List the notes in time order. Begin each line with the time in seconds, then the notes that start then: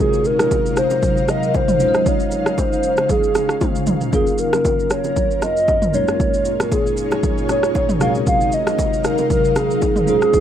Already playing: C3 F#3 G#3 C4 D#4 F4 F#4 A#4 F5
0.00 G#4
0.13 shaker
0.24 A#4, shaker
0.39 cross-stick, low bongo, shaker
0.51 kick, high bongo, shaker
0.66 shaker
0.76 C5, cross-stick, shaker
0.90 low bongo, shaker
1.03 kick, low conga, shaker
1.17 shaker
1.28 D#5, cross-stick, low bongo, shaker
1.43 shaker
1.54 C5, kick, high bongo, shaker
1.68 mid tom, shaker
1.79 C#3 G#3 C#4 D#4 F4 B4, low conga, shaker
1.88 D#5
1.94 cross-stick, shaker
2.06 C#5, kick, low conga, shaker
2.20 shaker
2.31 low bongo, shaker
2.46 cross-stick, shaker
2.58 C5, kick, high bongo, shaker
2.73 shaker
2.83 shaker
2.97 cross-stick, low bongo, shaker
3.09 G#4, kick, low conga, shaker
3.24 shaker
3.35 cross-stick, low bongo, shaker
3.49 cross-stick, shaker
3.60 G#3 C#4 D#4 F4 C5, kick, high tom, high bongo, shaker
3.75 shaker
3.87 mid tom, low conga, shaker
4.01 floor tom, shaker
4.11 F#2 F#3 A#3 C#4 F4 G#4 A#4, kick, low conga, shaker
4.27 shaker
4.38 A#4, shaker
4.53 cross-stick, low bongo, shaker
4.65 kick, high bongo, shaker
4.79 shaker
4.90 C#5, cross-stick, shaker
5.04 low bongo, shaker
5.16 kick, low conga, shaker
5.31 shaker
5.42 D#5, cross-stick, low bongo, shaker
5.57 shaker
5.68 kick, high bongo, shaker
5.82 mid tom, shaker
5.92 A#2 G#3 A#3 C#4 D#4 G#4 A#4 C#5, low conga, shaker
6.08 cross-stick, shaker
6.20 kick, low conga, shaker
6.34 shaker
6.45 shaker
6.60 A#4, cross-stick, low bongo, shaker
6.72 G#4, kick, high bongo, shaker
6.87 shaker
6.97 shaker
7.11 cross-stick, low bongo, shaker
7.23 kick, low conga, shaker
7.38 shaker
7.49 C#5, cross-stick, low bongo, shaker
7.63 cross-stick, shaker
7.75 kick, high bongo, shaker
7.89 mid tom, shaker
7.99 C3 F#3 G#3 C4 F4 F#4 A#4 F5, cross-stick, low conga, shaker
8.15 shaker
8.27 F5, kick, low conga, shaker
8.41 shaker
8.52 D#5, shaker
8.67 cross-stick, low bongo, shaker
8.79 kick, high bongo, shaker
8.93 shaker
9.04 A#4, cross-stick, shaker
9.18 low bongo, shaker
9.30 A#4, kick, low conga, shaker
9.45 shaker
9.56 G#4, cross-stick, low bongo, shaker
9.71 shaker
9.82 kick, high bongo, shaker
9.96 mid tom, shaker
10.06 C#3 G#3 C#4 D#4 F4 G#4 C5, low conga, shaker
10.22 cross-stick, shaker
10.34 kick, low conga, shaker